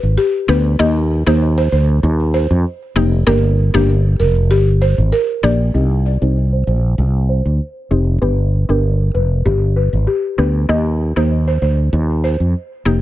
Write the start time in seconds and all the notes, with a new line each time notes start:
0.03 G#1
0.18 G4
0.48 D2 B3 D4 G4 B4
0.79 D#2 A#3 D#4 G4 D#5
1.26 D#2 A#3 D#4 G4 C5
1.58 C5
1.72 D2 C5
2.03 D#2
2.34 C5
2.51 F2
2.96 F1 A#3 D#4 G4
3.27 G1 A#3 D4 G4 A#4
3.74 G1 A#3 D4 G4
4.20 F1 A#4
4.51 G1 G4
4.82 C5
4.98 G#1
5.12 A#4
5.43 A#1 A#3 D4 G4 D5
5.74 C2 C4 D#4 G4 D#5
6.21 C2 C4 D#4 G4 C5
6.53 C5
6.67 A#1 C5
6.98 C2
7.29 C5
7.45 D2
7.91 F1 C4 D#4 G4
8.22 G1 B3 D4 G4 B4
8.69 G1 B3 D4 G4 A#4
9.14 F1 B4
9.45 G1 G4
9.76 B4
9.93 G#1
10.07 G4
10.38 D2 B3 D4 G4 B4
10.69 D#2 A#3 D#4 G4 D#5
11.16 D#2 A#3 D#4 G4 C5
11.48 C5
11.62 D2 C5
11.93 D#2
12.24 C5
12.40 F2
12.85 F1 A#3 D#4 G4